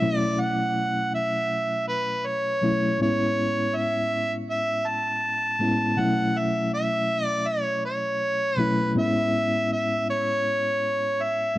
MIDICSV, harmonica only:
0, 0, Header, 1, 2, 480
1, 0, Start_track
1, 0, Key_signature, 3, "major"
1, 0, Tempo, 745342
1, 13, Time_signature, 4, 2, 24, 8
1, 7459, End_track
2, 0, Start_track
2, 0, Title_t, "Harmonica"
2, 0, Program_c, 0, 22
2, 0, Note_on_c, 0, 76, 84
2, 112, Note_off_c, 0, 76, 0
2, 112, Note_on_c, 0, 74, 84
2, 257, Note_on_c, 0, 78, 89
2, 267, Note_off_c, 0, 74, 0
2, 732, Note_off_c, 0, 78, 0
2, 736, Note_on_c, 0, 76, 95
2, 1188, Note_off_c, 0, 76, 0
2, 1213, Note_on_c, 0, 71, 81
2, 1455, Note_on_c, 0, 73, 84
2, 1465, Note_off_c, 0, 71, 0
2, 1933, Note_off_c, 0, 73, 0
2, 1945, Note_on_c, 0, 73, 96
2, 2422, Note_on_c, 0, 76, 90
2, 2432, Note_off_c, 0, 73, 0
2, 2790, Note_off_c, 0, 76, 0
2, 2900, Note_on_c, 0, 76, 88
2, 3139, Note_on_c, 0, 81, 95
2, 3149, Note_off_c, 0, 76, 0
2, 3860, Note_on_c, 0, 78, 101
2, 3870, Note_off_c, 0, 81, 0
2, 4107, Note_on_c, 0, 76, 86
2, 4117, Note_off_c, 0, 78, 0
2, 4336, Note_off_c, 0, 76, 0
2, 4340, Note_on_c, 0, 76, 93
2, 4674, Note_off_c, 0, 76, 0
2, 4674, Note_on_c, 0, 74, 93
2, 4816, Note_on_c, 0, 73, 86
2, 4826, Note_off_c, 0, 74, 0
2, 5050, Note_off_c, 0, 73, 0
2, 5054, Note_on_c, 0, 73, 90
2, 5530, Note_off_c, 0, 73, 0
2, 5530, Note_on_c, 0, 71, 90
2, 5747, Note_off_c, 0, 71, 0
2, 5785, Note_on_c, 0, 76, 96
2, 6232, Note_off_c, 0, 76, 0
2, 6263, Note_on_c, 0, 76, 86
2, 6480, Note_off_c, 0, 76, 0
2, 6504, Note_on_c, 0, 73, 97
2, 7228, Note_on_c, 0, 76, 82
2, 7238, Note_off_c, 0, 73, 0
2, 7459, Note_off_c, 0, 76, 0
2, 7459, End_track
0, 0, End_of_file